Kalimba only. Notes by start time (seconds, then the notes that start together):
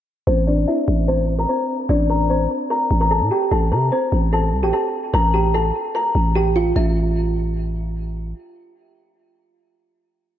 0.27 C4 C5
0.47 D4 D5
0.68 E4 E5
1.08 C4 C5
1.39 A#4 A#5
1.49 C4 C5
1.89 D4 D5
2.10 A#4 A#5
2.30 C4 C5
2.70 A#4 A#5
3.01 A#4 A#5
3.11 A4 A5
3.31 G4 G5
3.51 A4 A5
3.72 A#4 A#5
3.92 C4 C5
4.33 A4 A5
4.63 G4 G5
4.73 A4 A5
5.14 A#4 A#5
5.34 G4 G5
5.54 A4 A5
5.95 A#4 A#5
6.35 G4 G5
6.56 F4 F5
6.76 E5